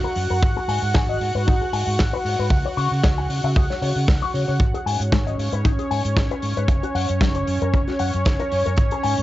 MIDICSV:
0, 0, Header, 1, 5, 480
1, 0, Start_track
1, 0, Tempo, 521739
1, 394, Time_signature, 4, 2, 24, 8
1, 8488, End_track
2, 0, Start_track
2, 0, Title_t, "Clean electric guitar"
2, 0, Program_c, 0, 27
2, 39, Note_on_c, 0, 70, 94
2, 75, Note_off_c, 0, 70, 0
2, 279, Note_on_c, 0, 70, 73
2, 336, Note_off_c, 0, 70, 0
2, 522, Note_on_c, 0, 68, 74
2, 556, Note_off_c, 0, 68, 0
2, 631, Note_on_c, 0, 80, 73
2, 731, Note_off_c, 0, 80, 0
2, 871, Note_on_c, 0, 68, 95
2, 912, Note_off_c, 0, 68, 0
2, 1004, Note_on_c, 0, 75, 74
2, 1059, Note_off_c, 0, 75, 0
2, 1243, Note_on_c, 0, 71, 74
2, 1298, Note_off_c, 0, 71, 0
2, 1352, Note_on_c, 0, 63, 94
2, 1419, Note_off_c, 0, 63, 0
2, 1483, Note_on_c, 0, 68, 75
2, 1517, Note_off_c, 0, 68, 0
2, 1593, Note_on_c, 0, 80, 74
2, 1692, Note_off_c, 0, 80, 0
2, 1961, Note_on_c, 0, 71, 97
2, 1996, Note_off_c, 0, 71, 0
2, 2202, Note_on_c, 0, 71, 70
2, 2258, Note_off_c, 0, 71, 0
2, 2443, Note_on_c, 0, 73, 70
2, 2476, Note_off_c, 0, 73, 0
2, 2550, Note_on_c, 0, 85, 72
2, 2650, Note_off_c, 0, 85, 0
2, 2792, Note_on_c, 0, 73, 93
2, 2832, Note_off_c, 0, 73, 0
2, 2926, Note_on_c, 0, 80, 73
2, 2980, Note_off_c, 0, 80, 0
2, 3165, Note_on_c, 0, 76, 71
2, 3219, Note_off_c, 0, 76, 0
2, 3275, Note_on_c, 0, 68, 97
2, 3340, Note_off_c, 0, 68, 0
2, 3405, Note_on_c, 0, 73, 72
2, 3437, Note_off_c, 0, 73, 0
2, 3516, Note_on_c, 0, 73, 73
2, 3581, Note_off_c, 0, 73, 0
2, 3883, Note_on_c, 0, 85, 96
2, 3966, Note_off_c, 0, 85, 0
2, 3993, Note_on_c, 0, 73, 72
2, 4059, Note_off_c, 0, 73, 0
2, 4123, Note_on_c, 0, 73, 70
2, 4156, Note_off_c, 0, 73, 0
2, 4364, Note_on_c, 0, 68, 72
2, 4397, Note_off_c, 0, 68, 0
2, 4475, Note_on_c, 0, 80, 73
2, 4573, Note_off_c, 0, 80, 0
2, 4716, Note_on_c, 0, 56, 78
2, 4754, Note_off_c, 0, 56, 0
2, 4847, Note_on_c, 0, 75, 72
2, 4901, Note_off_c, 0, 75, 0
2, 5087, Note_on_c, 0, 71, 72
2, 5141, Note_off_c, 0, 71, 0
2, 5195, Note_on_c, 0, 63, 97
2, 5260, Note_off_c, 0, 63, 0
2, 5327, Note_on_c, 0, 68, 75
2, 5358, Note_off_c, 0, 68, 0
2, 5435, Note_on_c, 0, 80, 72
2, 5533, Note_off_c, 0, 80, 0
2, 5808, Note_on_c, 0, 71, 93
2, 5839, Note_off_c, 0, 71, 0
2, 6045, Note_on_c, 0, 71, 73
2, 6100, Note_off_c, 0, 71, 0
2, 6286, Note_on_c, 0, 66, 72
2, 6318, Note_off_c, 0, 66, 0
2, 6393, Note_on_c, 0, 78, 72
2, 6492, Note_off_c, 0, 78, 0
2, 6634, Note_on_c, 0, 54, 78
2, 6673, Note_off_c, 0, 54, 0
2, 6767, Note_on_c, 0, 73, 70
2, 6820, Note_off_c, 0, 73, 0
2, 7008, Note_on_c, 0, 70, 74
2, 7061, Note_off_c, 0, 70, 0
2, 7115, Note_on_c, 0, 61, 98
2, 7180, Note_off_c, 0, 61, 0
2, 7244, Note_on_c, 0, 66, 76
2, 7277, Note_off_c, 0, 66, 0
2, 7354, Note_on_c, 0, 78, 72
2, 7452, Note_off_c, 0, 78, 0
2, 7723, Note_on_c, 0, 70, 96
2, 7757, Note_off_c, 0, 70, 0
2, 7963, Note_on_c, 0, 70, 72
2, 8018, Note_off_c, 0, 70, 0
2, 8204, Note_on_c, 0, 68, 73
2, 8237, Note_off_c, 0, 68, 0
2, 8311, Note_on_c, 0, 80, 75
2, 8410, Note_off_c, 0, 80, 0
2, 8488, End_track
3, 0, Start_track
3, 0, Title_t, "Analog synth pad"
3, 0, Program_c, 1, 89
3, 0, Note_on_c, 1, 66, 80
3, 0, Note_on_c, 1, 78, 80
3, 4238, Note_on_c, 1, 61, 81
3, 4240, Note_on_c, 1, 73, 84
3, 4243, Note_off_c, 1, 66, 0
3, 4243, Note_off_c, 1, 78, 0
3, 8488, Note_off_c, 1, 61, 0
3, 8488, Note_off_c, 1, 73, 0
3, 8488, End_track
4, 0, Start_track
4, 0, Title_t, "Fingered electric bass"
4, 0, Program_c, 2, 33
4, 149, Note_on_c, 2, 42, 82
4, 256, Note_off_c, 2, 42, 0
4, 279, Note_on_c, 2, 42, 84
4, 369, Note_off_c, 2, 42, 0
4, 392, Note_on_c, 2, 32, 97
4, 497, Note_off_c, 2, 32, 0
4, 627, Note_on_c, 2, 44, 95
4, 735, Note_off_c, 2, 44, 0
4, 758, Note_on_c, 2, 44, 86
4, 848, Note_off_c, 2, 44, 0
4, 872, Note_on_c, 2, 32, 94
4, 1068, Note_off_c, 2, 32, 0
4, 1108, Note_on_c, 2, 44, 79
4, 1215, Note_off_c, 2, 44, 0
4, 1240, Note_on_c, 2, 44, 91
4, 1329, Note_off_c, 2, 44, 0
4, 1359, Note_on_c, 2, 32, 83
4, 1461, Note_off_c, 2, 32, 0
4, 1590, Note_on_c, 2, 44, 86
4, 1696, Note_off_c, 2, 44, 0
4, 1718, Note_on_c, 2, 44, 91
4, 1808, Note_off_c, 2, 44, 0
4, 1842, Note_on_c, 2, 32, 94
4, 1942, Note_off_c, 2, 32, 0
4, 2068, Note_on_c, 2, 44, 82
4, 2175, Note_off_c, 2, 44, 0
4, 2200, Note_on_c, 2, 44, 81
4, 2289, Note_off_c, 2, 44, 0
4, 2305, Note_on_c, 2, 37, 91
4, 2413, Note_off_c, 2, 37, 0
4, 2549, Note_on_c, 2, 49, 95
4, 2656, Note_off_c, 2, 49, 0
4, 2680, Note_on_c, 2, 49, 83
4, 2769, Note_off_c, 2, 49, 0
4, 2798, Note_on_c, 2, 37, 92
4, 2991, Note_off_c, 2, 37, 0
4, 3029, Note_on_c, 2, 49, 77
4, 3136, Note_off_c, 2, 49, 0
4, 3163, Note_on_c, 2, 49, 94
4, 3250, Note_off_c, 2, 49, 0
4, 3276, Note_on_c, 2, 37, 84
4, 3379, Note_off_c, 2, 37, 0
4, 3512, Note_on_c, 2, 49, 88
4, 3617, Note_off_c, 2, 49, 0
4, 3643, Note_on_c, 2, 49, 88
4, 3730, Note_off_c, 2, 49, 0
4, 3754, Note_on_c, 2, 37, 88
4, 3858, Note_off_c, 2, 37, 0
4, 3994, Note_on_c, 2, 49, 80
4, 4098, Note_off_c, 2, 49, 0
4, 4127, Note_on_c, 2, 49, 84
4, 4212, Note_off_c, 2, 49, 0
4, 4231, Note_on_c, 2, 32, 95
4, 4337, Note_off_c, 2, 32, 0
4, 4473, Note_on_c, 2, 44, 94
4, 4578, Note_off_c, 2, 44, 0
4, 4601, Note_on_c, 2, 44, 83
4, 4689, Note_off_c, 2, 44, 0
4, 4714, Note_on_c, 2, 32, 94
4, 4909, Note_off_c, 2, 32, 0
4, 4953, Note_on_c, 2, 44, 78
4, 5058, Note_off_c, 2, 44, 0
4, 5083, Note_on_c, 2, 44, 92
4, 5171, Note_off_c, 2, 44, 0
4, 5197, Note_on_c, 2, 32, 85
4, 5300, Note_off_c, 2, 32, 0
4, 5436, Note_on_c, 2, 44, 89
4, 5539, Note_off_c, 2, 44, 0
4, 5567, Note_on_c, 2, 44, 91
4, 5653, Note_off_c, 2, 44, 0
4, 5673, Note_on_c, 2, 32, 93
4, 5778, Note_off_c, 2, 32, 0
4, 5915, Note_on_c, 2, 44, 82
4, 6019, Note_off_c, 2, 44, 0
4, 6047, Note_on_c, 2, 44, 82
4, 6132, Note_off_c, 2, 44, 0
4, 6148, Note_on_c, 2, 30, 95
4, 6255, Note_off_c, 2, 30, 0
4, 6394, Note_on_c, 2, 42, 95
4, 6498, Note_off_c, 2, 42, 0
4, 6528, Note_on_c, 2, 42, 84
4, 6613, Note_off_c, 2, 42, 0
4, 6631, Note_on_c, 2, 30, 93
4, 6828, Note_off_c, 2, 30, 0
4, 6874, Note_on_c, 2, 42, 82
4, 6978, Note_off_c, 2, 42, 0
4, 7007, Note_on_c, 2, 42, 89
4, 7092, Note_off_c, 2, 42, 0
4, 7116, Note_on_c, 2, 30, 87
4, 7219, Note_off_c, 2, 30, 0
4, 7358, Note_on_c, 2, 42, 88
4, 7460, Note_off_c, 2, 42, 0
4, 7491, Note_on_c, 2, 42, 91
4, 7575, Note_off_c, 2, 42, 0
4, 7597, Note_on_c, 2, 30, 92
4, 7699, Note_off_c, 2, 30, 0
4, 7839, Note_on_c, 2, 42, 81
4, 7941, Note_off_c, 2, 42, 0
4, 7970, Note_on_c, 2, 42, 84
4, 8054, Note_off_c, 2, 42, 0
4, 8073, Note_on_c, 2, 32, 97
4, 8178, Note_off_c, 2, 32, 0
4, 8319, Note_on_c, 2, 44, 94
4, 8421, Note_off_c, 2, 44, 0
4, 8448, Note_on_c, 2, 44, 86
4, 8488, Note_off_c, 2, 44, 0
4, 8488, End_track
5, 0, Start_track
5, 0, Title_t, "Drums"
5, 144, Note_on_c, 9, 46, 97
5, 236, Note_off_c, 9, 46, 0
5, 392, Note_on_c, 9, 36, 125
5, 484, Note_off_c, 9, 36, 0
5, 634, Note_on_c, 9, 46, 106
5, 726, Note_off_c, 9, 46, 0
5, 869, Note_on_c, 9, 38, 111
5, 873, Note_on_c, 9, 36, 123
5, 961, Note_off_c, 9, 38, 0
5, 965, Note_off_c, 9, 36, 0
5, 1114, Note_on_c, 9, 46, 91
5, 1206, Note_off_c, 9, 46, 0
5, 1359, Note_on_c, 9, 36, 111
5, 1451, Note_off_c, 9, 36, 0
5, 1594, Note_on_c, 9, 46, 107
5, 1686, Note_off_c, 9, 46, 0
5, 1831, Note_on_c, 9, 38, 122
5, 1842, Note_on_c, 9, 36, 107
5, 1923, Note_off_c, 9, 38, 0
5, 1934, Note_off_c, 9, 36, 0
5, 2077, Note_on_c, 9, 46, 106
5, 2169, Note_off_c, 9, 46, 0
5, 2304, Note_on_c, 9, 36, 112
5, 2396, Note_off_c, 9, 36, 0
5, 2557, Note_on_c, 9, 46, 100
5, 2649, Note_off_c, 9, 46, 0
5, 2793, Note_on_c, 9, 38, 113
5, 2798, Note_on_c, 9, 36, 120
5, 2885, Note_off_c, 9, 38, 0
5, 2890, Note_off_c, 9, 36, 0
5, 3037, Note_on_c, 9, 46, 97
5, 3129, Note_off_c, 9, 46, 0
5, 3277, Note_on_c, 9, 36, 112
5, 3369, Note_off_c, 9, 36, 0
5, 3409, Note_on_c, 9, 38, 35
5, 3501, Note_off_c, 9, 38, 0
5, 3517, Note_on_c, 9, 46, 105
5, 3609, Note_off_c, 9, 46, 0
5, 3755, Note_on_c, 9, 36, 124
5, 3758, Note_on_c, 9, 38, 100
5, 3847, Note_off_c, 9, 36, 0
5, 3850, Note_off_c, 9, 38, 0
5, 4002, Note_on_c, 9, 46, 90
5, 4094, Note_off_c, 9, 46, 0
5, 4231, Note_on_c, 9, 36, 103
5, 4231, Note_on_c, 9, 42, 61
5, 4323, Note_off_c, 9, 36, 0
5, 4323, Note_off_c, 9, 42, 0
5, 4367, Note_on_c, 9, 42, 41
5, 4459, Note_off_c, 9, 42, 0
5, 4481, Note_on_c, 9, 46, 108
5, 4573, Note_off_c, 9, 46, 0
5, 4611, Note_on_c, 9, 42, 62
5, 4703, Note_off_c, 9, 42, 0
5, 4713, Note_on_c, 9, 36, 109
5, 4716, Note_on_c, 9, 38, 116
5, 4723, Note_on_c, 9, 42, 64
5, 4805, Note_off_c, 9, 36, 0
5, 4808, Note_off_c, 9, 38, 0
5, 4815, Note_off_c, 9, 42, 0
5, 4853, Note_on_c, 9, 42, 40
5, 4945, Note_off_c, 9, 42, 0
5, 4962, Note_on_c, 9, 46, 98
5, 5054, Note_off_c, 9, 46, 0
5, 5082, Note_on_c, 9, 42, 54
5, 5174, Note_off_c, 9, 42, 0
5, 5197, Note_on_c, 9, 42, 61
5, 5198, Note_on_c, 9, 36, 108
5, 5289, Note_off_c, 9, 42, 0
5, 5290, Note_off_c, 9, 36, 0
5, 5326, Note_on_c, 9, 42, 45
5, 5418, Note_off_c, 9, 42, 0
5, 5438, Note_on_c, 9, 46, 101
5, 5530, Note_off_c, 9, 46, 0
5, 5566, Note_on_c, 9, 42, 68
5, 5658, Note_off_c, 9, 42, 0
5, 5673, Note_on_c, 9, 36, 111
5, 5676, Note_on_c, 9, 42, 66
5, 5678, Note_on_c, 9, 38, 102
5, 5765, Note_off_c, 9, 36, 0
5, 5768, Note_off_c, 9, 42, 0
5, 5770, Note_off_c, 9, 38, 0
5, 5806, Note_on_c, 9, 42, 39
5, 5898, Note_off_c, 9, 42, 0
5, 5910, Note_on_c, 9, 46, 89
5, 6002, Note_off_c, 9, 46, 0
5, 6047, Note_on_c, 9, 42, 68
5, 6139, Note_off_c, 9, 42, 0
5, 6149, Note_on_c, 9, 36, 101
5, 6158, Note_on_c, 9, 42, 58
5, 6241, Note_off_c, 9, 36, 0
5, 6250, Note_off_c, 9, 42, 0
5, 6287, Note_on_c, 9, 42, 40
5, 6379, Note_off_c, 9, 42, 0
5, 6397, Note_on_c, 9, 46, 104
5, 6489, Note_off_c, 9, 46, 0
5, 6519, Note_on_c, 9, 42, 60
5, 6611, Note_off_c, 9, 42, 0
5, 6631, Note_on_c, 9, 36, 112
5, 6632, Note_on_c, 9, 42, 60
5, 6640, Note_on_c, 9, 38, 102
5, 6723, Note_off_c, 9, 36, 0
5, 6724, Note_off_c, 9, 42, 0
5, 6732, Note_off_c, 9, 38, 0
5, 6759, Note_on_c, 9, 42, 44
5, 6851, Note_off_c, 9, 42, 0
5, 6875, Note_on_c, 9, 46, 86
5, 6967, Note_off_c, 9, 46, 0
5, 7006, Note_on_c, 9, 42, 59
5, 7098, Note_off_c, 9, 42, 0
5, 7116, Note_on_c, 9, 36, 107
5, 7120, Note_on_c, 9, 42, 66
5, 7208, Note_off_c, 9, 36, 0
5, 7212, Note_off_c, 9, 42, 0
5, 7244, Note_on_c, 9, 42, 44
5, 7247, Note_on_c, 9, 38, 29
5, 7336, Note_off_c, 9, 42, 0
5, 7339, Note_off_c, 9, 38, 0
5, 7351, Note_on_c, 9, 46, 99
5, 7443, Note_off_c, 9, 46, 0
5, 7483, Note_on_c, 9, 42, 63
5, 7575, Note_off_c, 9, 42, 0
5, 7591, Note_on_c, 9, 42, 60
5, 7598, Note_on_c, 9, 36, 122
5, 7598, Note_on_c, 9, 38, 119
5, 7683, Note_off_c, 9, 42, 0
5, 7690, Note_off_c, 9, 36, 0
5, 7690, Note_off_c, 9, 38, 0
5, 7725, Note_on_c, 9, 42, 44
5, 7817, Note_off_c, 9, 42, 0
5, 7835, Note_on_c, 9, 46, 92
5, 7927, Note_off_c, 9, 46, 0
5, 7968, Note_on_c, 9, 42, 62
5, 8060, Note_off_c, 9, 42, 0
5, 8063, Note_on_c, 9, 42, 62
5, 8073, Note_on_c, 9, 36, 108
5, 8155, Note_off_c, 9, 42, 0
5, 8165, Note_off_c, 9, 36, 0
5, 8197, Note_on_c, 9, 42, 46
5, 8289, Note_off_c, 9, 42, 0
5, 8311, Note_on_c, 9, 46, 106
5, 8403, Note_off_c, 9, 46, 0
5, 8441, Note_on_c, 9, 42, 59
5, 8488, Note_off_c, 9, 42, 0
5, 8488, End_track
0, 0, End_of_file